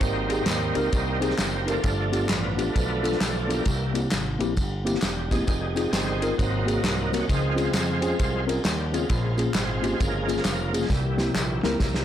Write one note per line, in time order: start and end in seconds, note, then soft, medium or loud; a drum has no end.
0.01 0.40 G#1 loud
0.01 0.72 G#2 medium
0.01 1.35 D#3 medium
0.01 1.35 G3 medium
0.01 1.80 A#3 medium
0.01 1.81 C4 loud
0.01 kick loud
0.01 ride bell medium
0.01 tambourine medium
0.29 0.42 C4 medium
0.29 0.42 D#4 medium
0.29 0.42 G4 medium
0.29 0.42 G#4 medium
0.29 ride bell medium
0.29 tambourine medium
0.46 0.71 D#2 medium
0.46 snare loud
0.46 clap loud
0.46 ride bell medium
0.46 tambourine loud
0.75 0.90 C#2 medium
0.75 0.88 C4 medium
0.75 0.88 D#4 medium
0.75 0.88 G4 medium
0.75 0.88 A#4 loud
0.75 ride bell medium
0.75 tambourine medium
0.93 1.32 C2 medium
0.93 kick loud
0.93 ride bell medium
0.93 tambourine medium
1.20 1.33 C4 medium
1.20 1.33 D#4 medium
1.20 1.34 G4 medium
1.20 1.34 G#4 loud
1.20 ride bell medium
1.20 tambourine medium
1.30 snare soft
1.38 1.77 F#1 medium
1.38 1.68 G3 medium
1.38 snare loud
1.38 clap medium
1.38 ride bell medium
1.38 tambourine medium
1.66 2.30 D3 medium
1.66 2.30 F3 medium
1.66 2.32 A3 loud
1.66 1.79 C4 medium
1.66 1.79 D#4 medium
1.66 1.79 G4 medium
1.66 1.79 A#4 medium
1.66 ride bell medium
1.66 tambourine medium
1.84 2.23 G1 loud
1.84 2.55 G2 medium
1.84 kick loud
1.84 ride bell medium
1.84 tambourine medium
2.12 2.25 B3 medium
2.12 2.25 D4 medium
2.12 2.25 F4 medium
2.12 2.25 G4 medium
2.12 ride bell medium
2.12 tambourine medium
2.29 2.69 A1 medium
2.29 2.76 D3 medium
2.29 2.58 F3 medium
2.29 2.59 B3 loud
2.29 snare loud
2.29 clap medium
2.29 ride bell medium
2.29 tambourine medium
2.57 2.76 F3 medium
2.57 3.19 A3 medium
2.57 2.70 B3 medium
2.57 2.75 B3 medium
2.57 2.70 D4 medium
2.57 2.70 F4 medium
2.57 2.70 G4 medium
2.57 ride bell medium
2.57 tambourine soft
2.76 3.14 B1 medium
2.76 3.63 D3 medium
2.76 3.63 F3 medium
2.76 3.23 B3 loud
2.76 kick loud
2.76 ride bell medium
2.76 tambourine medium
3.03 3.15 B3 medium
3.03 3.16 D4 medium
3.03 3.16 F4 medium
3.03 3.16 A4 medium
3.03 ride bell medium
3.03 tambourine medium
3.12 snare soft
3.20 3.60 B1 medium
3.20 3.50 A3 medium
3.20 snare loud
3.20 clap medium
3.20 ride bell medium
3.20 tambourine medium
3.48 3.66 E3 medium
3.48 3.66 G3 medium
3.48 3.67 A#3 loud
3.48 3.61 B3 medium
3.48 3.61 D4 medium
3.48 3.61 F4 medium
3.48 3.61 A4 medium
3.48 ride bell medium
3.48 tambourine medium
3.65 4.05 C2 loud
3.65 4.37 C3 medium
3.65 4.00 E3 medium
3.65 4.01 G3 medium
3.65 4.01 A#3 medium
3.65 kick loud
3.65 ride bell medium
3.65 tambourine medium
3.94 4.06 A#3 medium
3.94 4.07 C4 medium
3.94 4.07 E4 medium
3.94 4.07 G4 medium
3.94 ride bell medium
3.94 tambourine medium
4.11 4.36 G#1 medium
4.11 snare loud
4.11 clap loud
4.11 ride bell medium
4.11 tambourine loud
4.39 4.59 A#1 medium
4.39 4.52 A#3 medium
4.39 4.52 C4 medium
4.39 4.52 E4 medium
4.39 4.53 G4 medium
4.39 ride bell medium
4.39 tambourine medium
4.57 4.96 G1 medium
4.57 kick loud
4.57 ride bell medium
4.57 tambourine medium
4.85 4.97 A#3 medium
4.85 4.98 C4 medium
4.85 4.98 E4 medium
4.85 4.98 G4 medium
4.85 ride bell medium
4.85 tambourine medium
4.95 snare soft
5.02 5.41 E1 medium
5.02 5.33 G3 medium
5.02 snare loud
5.02 clap medium
5.02 ride bell medium
5.02 tambourine medium
5.31 6.18 C3 medium
5.31 5.46 D#3 medium
5.31 5.46 G#3 loud
5.31 5.43 A#3 medium
5.31 5.43 C4 medium
5.31 5.44 E4 medium
5.31 5.44 G4 medium
5.31 kick medium
5.31 snare soft
5.31 ride bell medium
5.31 tambourine medium
5.47 5.86 F1 loud
5.47 5.91 D#3 medium
5.47 6.18 G3 soft
5.47 5.92 G#3 medium
5.47 kick loud
5.47 ride bell medium
5.47 tambourine medium
5.75 5.88 C4 medium
5.75 5.88 D#4 medium
5.75 5.88 F4 medium
5.75 5.89 G#4 medium
5.75 ride bell medium
5.75 tambourine medium
5.92 6.31 G1 medium
5.92 6.35 D#3 medium
5.92 6.35 G#3 medium
5.92 6.35 C4 loud
5.92 snare loud
5.92 clap loud
5.92 ride bell medium
5.92 tambourine medium
6.22 6.34 C4 medium
6.22 6.34 D#4 medium
6.22 6.34 F4 medium
6.22 6.34 A#4 medium
6.22 ride bell medium
6.22 tambourine medium
6.37 6.77 G#1 medium
6.37 7.08 G#2 medium
6.37 7.24 C3 medium
6.37 6.67 D#3 medium
6.37 6.66 F#3 medium
6.37 6.67 A#3 medium
6.37 6.69 C4 loud
6.37 kick loud
6.37 ride bell medium
6.37 tambourine medium
6.66 7.25 D#3 medium
6.66 7.25 F#3 medium
6.66 6.78 A#3 medium
6.66 7.14 A#3 medium
6.66 6.79 C4 medium
6.66 6.79 F#4 medium
6.66 6.79 G#4 medium
6.66 ride bell medium
6.66 tambourine medium
6.83 7.22 C2 medium
6.83 snare loud
6.83 clap loud
6.83 ride bell medium
6.83 tambourine medium
7.13 7.25 A#3 medium
7.13 7.25 C4 medium
7.13 7.28 C#4 loud
7.13 7.25 F#4 medium
7.13 7.25 A#4 medium
7.13 snare soft
7.13 ride bell medium
7.13 tambourine medium
7.28 7.68 C#2 medium
7.28 7.98 C#3 medium
7.28 7.63 D#3 medium
7.28 8.45 F3 medium
7.28 8.45 G#3 medium
7.28 8.45 C4 loud
7.28 kick loud
7.28 ride bell medium
7.28 tambourine medium
7.55 7.68 C4 medium
7.55 7.69 C#4 medium
7.55 7.69 F4 medium
7.55 7.69 G#4 medium
7.55 ride bell medium
7.55 tambourine medium
7.74 8.13 F2 loud
7.74 snare loud
7.74 clap loud
7.74 ride bell medium
7.74 tambourine loud
8.01 8.14 C4 medium
8.01 8.14 C#4 medium
8.01 8.14 F4 medium
8.01 8.15 G#4 loud
8.01 ride bell medium
8.01 tambourine medium
8.19 8.58 C2 medium
8.19 kick loud
8.19 ride bell medium
8.19 tambourine medium
8.47 8.65 G#3 medium
8.47 8.59 C4 medium
8.47 8.59 C#4 medium
8.47 8.60 F4 medium
8.47 8.60 A#4 medium
8.47 ride bell medium
8.47 tambourine medium
8.65 9.03 D#2 medium
8.65 8.94 G3 medium
8.65 snare loud
8.65 clap loud
8.65 ride bell medium
8.65 tambourine medium
8.92 9.08 C#3 medium
8.92 9.55 F3 medium
8.92 9.08 G#3 medium
8.92 9.05 C4 medium
8.92 9.05 C#4 medium
8.92 9.05 F4 medium
8.92 9.06 G#4 medium
8.92 ride bell medium
8.92 tambourine medium
9.10 9.48 A#1 loud
9.10 9.79 A#2 medium
9.10 9.43 C#3 medium
9.10 9.43 G#3 medium
9.10 9.43 C4 medium
9.10 kick loud
9.10 ride bell medium
9.10 tambourine medium
9.37 9.49 A#3 medium
9.37 9.50 C#4 medium
9.37 9.50 F4 medium
9.37 9.50 G#4 medium
9.37 ride bell medium
9.37 tambourine medium
9.54 9.93 G#1 medium
9.54 9.99 F3 medium
9.54 10.41 G#3 medium
9.54 10.01 C4 loud
9.54 snare loud
9.54 clap loud
9.54 ride bell medium
9.54 tambourine loud
9.82 9.94 A#3 medium
9.82 9.95 C#4 medium
9.82 9.95 F4 medium
9.82 9.95 G4 medium
9.82 ride bell medium
9.82 tambourine soft
10.00 10.39 G1 medium
10.00 10.86 C#3 medium
10.00 10.86 F3 medium
10.00 10.76 A#3 loud
10.00 kick loud
10.00 ride bell medium
10.00 tambourine medium
10.28 10.40 A#3 medium
10.28 10.40 C#4 medium
10.28 10.40 F4 medium
10.28 10.40 G#4 medium
10.28 ride bell medium
10.28 tambourine medium
10.37 snare soft
10.45 10.84 F1 medium
10.45 snare loud
10.45 clap loud
10.45 ride bell medium
10.45 tambourine medium
10.73 10.90 G#3 medium
10.73 10.85 A#3 medium
10.73 10.85 C#4 medium
10.73 10.85 F4 medium
10.73 10.85 G#4 medium
10.73 ride bell medium
10.73 tambourine medium
10.89 11.28 C2 loud
10.89 12.05 A#2 medium
10.89 11.59 C3 medium
10.89 11.62 E3 medium
10.89 11.62 G3 medium
10.89 kick loud
10.89 snare medium
10.89 tambourine medium
11.16 11.29 A#3 medium
11.16 11.29 C4 medium
11.16 11.30 E4 medium
11.16 11.30 G4 medium
11.16 snare medium
11.16 tambourine medium
11.35 11.60 A#1 loud
11.35 snare medium
11.35 clap medium
11.35 tambourine loud
11.63 11.78 C#2 medium
11.63 12.05 E3 medium
11.63 12.05 G3 medium
11.63 11.75 A#3 medium
11.63 12.05 A#3 medium
11.63 11.75 C4 medium
11.63 11.76 E4 medium
11.63 11.76 A#4 medium
11.63 snare medium
11.63 tambourine soft
11.80 12.05 C2 medium
11.80 kick loud
11.80 snare medium
11.80 tambourine medium
11.94 snare medium